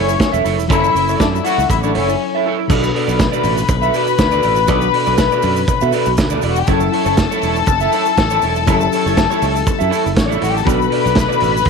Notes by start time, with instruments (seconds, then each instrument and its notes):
Already playing: fingered electric bass F#1, tine electric piano F#3 C#4 E4 A4, string section C#4 C#5, clean electric guitar E4
0.09 muted clean electric guitar stroke, shaker
0.19 muted clean electric guitar stroke, kick, snare, closed hi-hat, shaker
0.32 fingered electric bass E1, clean electric guitar E4 A4 E5, shaker
0.44 fingered electric bass F#1, clean electric guitar E4 A4 C#5, open hi-hat, shaker
0.58 fingered electric bass E1, muted clean electric guitar stroke, shaker
0.68 fingered electric bass F#1, tine electric piano F#3 C#4 E4 A4, clean electric guitar E4 A4 C#5, string section E4 E5, kick, closed hi-hat, shaker
0.84 shaker
0.95 fingered electric bass F#1, muted clean electric guitar stroke, open hi-hat, shaker
1.09 clean electric guitar E4 A4 C#5, shaker
1.18 fingered electric bass F#2, string section D4 D5, kick, snare, closed hi-hat, shaker
1.32 string section E4 E5, muted clean electric guitar stroke, shaker
1.44 clean electric guitar E4 A4 C#5, string section F#4 F#5, open hi-hat, shaker
1.58 fingered electric bass C#2, muted clean electric guitar stroke, shaker
1.70 fingered electric bass A1, string section E4 E5, muted clean electric guitar stroke, kick, closed hi-hat, shaker
1.82 string section D4 D5, clean electric guitar E4 A4 C#5, shaker
1.94 fingered electric bass F#1, string section C#4 C#5, clean electric guitar E4 A4 C#5, open hi-hat
2.08 muted clean electric guitar stroke, shaker
2.21 muted clean electric guitar stroke
2.35 clean electric guitar E4 A4 E5
2.46 clean electric guitar E4 A4 C#5
2.58 muted clean electric guitar stroke
2.68 fingered electric bass B1, tine electric piano B2 B3 D4 A4, clean electric guitar F#4 A4 D5, string section B4 B5, kick, crash, shaker
2.83 muted clean electric guitar stroke, shaker
2.94 clean electric guitar F#4 A4 D5, open hi-hat
3.07 fingered electric bass B1, clean electric guitar F#4 A4 D5, shaker
3.19 muted clean electric guitar stroke, kick, snare, closed hi-hat, shaker
3.32 clean electric guitar F#4 A4 D5, shaker
3.43 fingered electric bass A1, clean electric guitar F#4 A4 D5, open hi-hat, shaker
3.57 muted clean electric guitar stroke, shaker
3.68 fingered electric bass B1, muted clean electric guitar stroke, kick, closed hi-hat, shaker
3.82 clean electric guitar F#4 A4 E5, shaker
3.94 clean electric guitar F#4 A4 D5, open hi-hat, shaker
4.07 muted clean electric guitar stroke, shaker
4.18 fingered electric bass D2, muted clean electric guitar stroke, kick, snare, closed hi-hat, shaker
4.31 clean electric guitar F#4 A4 D5, shaker
4.43 fingered electric bass A1, clean electric guitar F#4 A4 D5, open hi-hat, shaker
4.56 muted clean electric guitar stroke, shaker
4.67 fingered electric bass B1, tine electric piano B2 B3 D4 B4, clean electric guitar F#4 A4 D5, kick, closed hi-hat, shaker
4.81 muted clean electric guitar stroke, shaker
4.94 clean electric guitar F#4 A4 D5, open hi-hat
5.06 fingered electric bass B1, clean electric guitar F#4 A4 D5, shaker
5.17 muted clean electric guitar stroke, kick, snare, closed hi-hat, shaker
5.31 clean electric guitar F#4 A4 D5, shaker
5.42 fingered electric bass F#2, clean electric guitar F#4 A4 D5, open hi-hat, shaker
5.56 muted clean electric guitar stroke, shaker
5.67 muted clean electric guitar stroke, kick, closed hi-hat, shaker
5.81 fingered electric bass B2, clean electric guitar F#4 A4 E5, shaker
5.92 clean electric guitar F#4 A4 D5, open hi-hat, shaker
6.06 fingered electric bass B1, muted clean electric guitar stroke, shaker
6.17 fingered electric bass D2, muted clean electric guitar stroke, kick, snare, closed hi-hat, shaker
6.30 clean electric guitar F#4 A4 D5, shaker
6.34 string section D4 D5
6.42 fingered electric bass E1, string section E4 E5, clean electric guitar F#4 A4 D5, open hi-hat, shaker
6.51 string section F#4 F#5
6.56 string section G4 G5, muted clean electric guitar stroke, shaker
6.67 fingered electric bass F#1, tine electric piano F#3 C#4 E4 A4, clean electric guitar E4 A4 C#5, string section A4 A5, kick, closed hi-hat, shaker
6.80 muted clean electric guitar stroke, shaker
6.92 clean electric guitar E4 A4 C#5, open hi-hat
7.05 fingered electric bass F#1, clean electric guitar E4 A4 C#5, shaker
7.17 muted clean electric guitar stroke, kick, snare, closed hi-hat, shaker
7.31 clean electric guitar E4 A4 C#5, shaker
7.41 fingered electric bass E1, clean electric guitar E4 A4 C#5, open hi-hat, shaker
7.56 muted clean electric guitar stroke, shaker
7.66 fingered electric bass F#1, muted clean electric guitar stroke, kick, closed hi-hat, shaker
7.80 clean electric guitar E4 A4 E5, shaker
7.92 clean electric guitar E4 A4 C#5, open hi-hat, shaker
8.06 muted clean electric guitar stroke, shaker
8.17 fingered electric bass A1, muted clean electric guitar stroke, kick, snare, closed hi-hat, shaker
8.30 clean electric guitar E4 A4 C#5, shaker
8.42 fingered electric bass E1, clean electric guitar E4 A4 C#5, open hi-hat, shaker
8.56 muted clean electric guitar stroke, shaker
8.66 fingered electric bass F#1, tine electric piano F#3 C#4 E4 G4, clean electric guitar E4 A4 C#5, kick, closed hi-hat, shaker
8.75 tine electric piano A4
8.80 muted clean electric guitar stroke, shaker
8.93 clean electric guitar E4 A4 C#5, open hi-hat, shaker
9.06 fingered electric bass F#1, clean electric guitar E4 A4 C#5, shaker
9.17 muted clean electric guitar stroke, kick, snare, closed hi-hat, shaker
9.30 clean electric guitar E4 A4 C#5, shaker
9.42 fingered electric bass C#2, clean electric guitar E4 A4 C#5, open hi-hat, shaker
9.54 muted clean electric guitar stroke, shaker
9.66 muted clean electric guitar stroke, kick, closed hi-hat, shaker
9.79 fingered electric bass F#2, clean electric guitar E4 A4 E5, shaker
9.90 clean electric guitar E4 A4 C#5, open hi-hat, shaker
10.04 fingered electric bass F#1, muted clean electric guitar stroke, shaker
10.14 fingered electric bass A1, string section C#4 C#5, muted clean electric guitar stroke, kick, snare, closed hi-hat, shaker
10.25 string section D4 D5, clean electric guitar C#5
10.29 clean electric guitar E4 A4, string section E4, shaker
10.33 string section E5
10.41 fingered electric bass A1, clean electric guitar E4 A4 C#5, string section F#4 F#5, open hi-hat, shaker
10.50 string section G4 G5
10.55 string section A4 A5, muted clean electric guitar stroke, shaker
10.65 fingered electric bass B1, tine electric piano B2 B3 D4 A4, clean electric guitar F#4 A4 D5, string section B4 B5, kick, closed hi-hat
10.69 shaker
10.79 muted clean electric guitar stroke, shaker
10.90 clean electric guitar F#4 A4 D5, open hi-hat
11.04 fingered electric bass B1, clean electric guitar F#4 A4 D5, shaker
11.15 muted clean electric guitar stroke, kick, snare, closed hi-hat, shaker
11.28 clean electric guitar F#4 A4 D5, shaker
11.40 fingered electric bass A1, clean electric guitar F#4 A4 D5, open hi-hat, shaker
11.54 muted clean electric guitar stroke, shaker
11.64 fingered electric bass B1, muted clean electric guitar stroke, kick, closed hi-hat